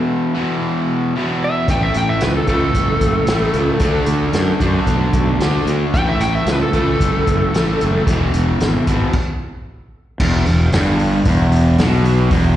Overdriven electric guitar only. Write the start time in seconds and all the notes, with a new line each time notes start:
Already playing: E2 B2 E3
0.35 B2 E3
0.39 E2
1.15 E2 B2
1.19 E3
1.68 A2 E3 A3
2.49 A2 E3 A3
3.29 A2 E3 A3
3.82 D3 A3 D4
4.61 D3 A3 D4
5.42 D3 A3 D4
5.94 A2 E3 A3
6.74 A2 E3 A3
7.54 A2 E3 A3
8.07 E2 B2
8.11 E3
8.87 E2 B2 E3
10.22 E2
10.48 E2
10.75 G2
11.28 E2
11.80 B2
12.32 E2